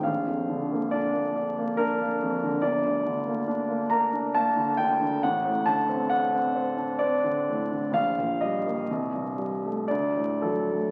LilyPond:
<<
  \new Staff \with { instrumentName = "Grand piano" } { \time 3/4 \key c \dorian \tempo 4 = 68 f''4 d''4 bes'4 | \key g \minor d''4. bes''8 a''8 g''8 | fis''8 a''8 fis''4 d''4 | f''8 ees''4. d''8 a'8 | }
  \new Staff \with { instrumentName = "Grand piano" } { \clef bass \time 3/4 \key c \dorian bes,,16 f,16 d16 bes16 d'16 bes16 d'16 bes16 d'16 bes16 f,16 d16 | \key g \minor g,,16 d,16 d16 bes16 d'16 bes16 bes'16 d'16 bes16 d16 d,16 d16 | a,,16 a,16 d16 c'16 d'16 c'16 c''16 d'16 c'16 d16 a,16 d16 | bes,,16 bes,16 g16 bes16 c,16 g,16 g16 a16 d,16 a,16 fis16 a16 | }
>>